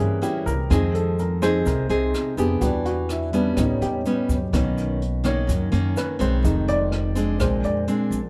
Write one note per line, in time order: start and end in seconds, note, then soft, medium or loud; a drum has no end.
0.00 0.20 G2 medium
0.00 0.72 E3 soft
0.00 0.68 G3 medium
0.00 0.19 A#3 medium
0.00 0.72 A#3 soft
0.00 0.19 C#4 medium
0.00 0.72 C#4 soft
0.00 0.19 E4 medium
0.00 0.21 G#4 medium
0.00 0.46 A#4 medium
0.00 0.72 B4 medium
0.00 0.72 C5 medium
0.00 0.72 C#5 medium
0.00 0.72 E5 medium
0.22 0.53 A#3 soft
0.22 0.53 C#4 medium
0.22 0.53 E4 medium
0.22 0.46 G4 medium
0.22 closed hi-hat soft
0.22 shaker medium
0.46 0.68 C2 medium
0.46 0.69 A#4 medium
0.46 closed hi-hat soft
0.46 shaker medium
0.70 1.62 F2 loud
0.70 2.57 D#3 soft
0.70 1.63 F3 medium
0.70 2.58 G#3 soft
0.70 1.18 C4 medium
0.70 2.58 C4 soft
0.70 1.18 D#4 medium
0.70 1.18 G#4 medium
0.70 0.94 G#4 medium
0.70 kick medium
0.70 cross-stick medium
0.70 closed hi-hat medium
0.70 shaker medium
0.95 1.18 A4 medium
0.95 closed hi-hat soft
0.95 shaker soft
1.19 1.42 A#4 medium
1.19 closed hi-hat soft
1.19 shaker medium
1.42 1.86 C4 medium
1.42 1.86 D#4 medium
1.42 1.86 G#4 medium
1.42 1.65 C5 medium
1.42 cross-stick medium
1.42 closed hi-hat soft
1.42 shaker medium
1.65 1.88 C2 loud
1.65 2.59 C3 medium
1.65 2.34 A#4 medium
1.65 kick medium
1.65 closed hi-hat medium
1.65 shaker medium
1.89 2.12 C2 medium
1.89 2.34 C4 medium
1.89 2.34 D#4 medium
1.89 2.34 G#4 medium
1.89 closed hi-hat soft
1.89 shaker soft
2.14 cross-stick medium
2.14 closed hi-hat soft
2.14 shaker medium
2.37 2.60 F2 medium
2.37 3.29 B3 medium
2.37 3.30 D4 medium
2.37 3.30 G4 medium
2.37 2.61 G#4 medium
2.37 closed hi-hat soft
2.37 shaker medium
2.60 3.53 E2 medium
2.60 3.33 E3 medium
2.60 3.29 G3 soft
2.60 3.30 D4 soft
2.60 2.84 F#4 soft
2.60 2.85 G4 medium
2.60 kick medium
2.60 closed hi-hat medium
2.60 shaker medium
2.85 3.09 F#4 medium
2.85 closed hi-hat soft
2.85 shaker soft
3.09 3.33 E4 medium
3.09 cross-stick soft
3.09 closed hi-hat soft
3.09 shaker soft
3.33 4.01 G3 medium
3.33 4.01 B3 medium
3.33 4.02 C#4 medium
3.33 3.56 D4 medium
3.33 closed hi-hat soft
3.33 shaker medium
3.57 3.80 A1 medium
3.57 4.50 A2 medium
3.57 3.89 G3 soft
3.57 3.89 B3 soft
3.57 3.90 C#4 soft
3.57 3.81 D#4 soft
3.57 kick medium
3.57 cross-stick medium
3.57 closed hi-hat medium
3.57 shaker medium
3.81 4.03 E2 medium
3.81 3.96 G4 medium
3.81 closed hi-hat soft
3.81 shaker soft
4.05 4.36 G3 soft
4.05 4.36 B3 medium
4.05 4.37 C#4 medium
4.05 closed hi-hat soft
4.05 shaker medium
4.29 4.51 F#2 medium
4.29 kick medium
4.29 closed hi-hat soft
4.29 shaker medium
4.53 5.45 B1 loud
4.53 5.46 B2 medium
4.53 5.21 D#3 soft
4.53 5.01 D#3 soft
4.53 5.21 A#3 soft
4.53 5.01 A#3 medium
4.53 5.21 C#4 soft
4.53 5.01 C#4 medium
4.53 kick medium
4.53 cross-stick medium
4.53 closed hi-hat medium
4.53 shaker medium
4.78 closed hi-hat soft
4.78 shaker soft
5.02 closed hi-hat soft
5.24 5.68 D#3 medium
5.24 5.46 D#3 soft
5.24 5.68 A#3 medium
5.24 5.47 A#3 soft
5.24 5.69 C#4 medium
5.24 5.47 C#4 soft
5.24 5.93 C#5 medium
5.24 cross-stick medium
5.24 closed hi-hat soft
5.24 shaker medium
5.47 6.41 F#2 medium
5.47 5.71 F#2 medium
5.47 kick medium
5.47 closed hi-hat medium
5.47 shaker medium
5.72 5.95 F#2 medium
5.72 6.16 D#3 medium
5.72 6.16 A#3 medium
5.72 6.16 C#4 medium
5.72 closed hi-hat soft
5.72 shaker soft
5.97 6.20 B4 medium
5.97 cross-stick medium
5.97 closed hi-hat soft
5.97 shaker medium
6.19 6.43 B1 medium
6.19 7.12 D#3 medium
6.19 7.12 G#3 medium
6.19 7.12 C4 medium
6.19 6.88 C5 medium
6.19 closed hi-hat soft
6.19 shaker medium
6.43 7.36 F1 loud
6.43 7.37 F2 medium
6.43 6.76 G#3 soft
6.43 6.76 D#4 soft
6.43 kick medium
6.43 closed hi-hat medium
6.43 shaker medium
6.68 7.36 D5 medium
6.68 closed hi-hat soft
6.68 shaker soft
6.92 cross-stick medium
6.92 closed hi-hat soft
7.15 7.84 G#3 medium
7.15 7.84 C4 medium
7.15 7.84 D4 medium
7.15 closed hi-hat soft
7.15 shaker medium
7.39 7.62 A#1 medium
7.39 8.30 A#2 medium
7.39 7.71 G#3 soft
7.39 7.71 C4 soft
7.39 7.72 D4 soft
7.39 7.64 C5 medium
7.39 kick medium
7.39 cross-stick medium
7.39 closed hi-hat medium
7.39 shaker medium
7.63 7.86 F2 medium
7.63 8.30 D5 medium
7.63 closed hi-hat soft
7.63 shaker soft
7.88 8.19 G#3 medium
7.88 8.19 C4 medium
7.88 8.19 D4 medium
7.88 closed hi-hat soft
7.88 shaker medium
8.11 8.30 A#1 medium
8.11 closed hi-hat soft
8.11 shaker medium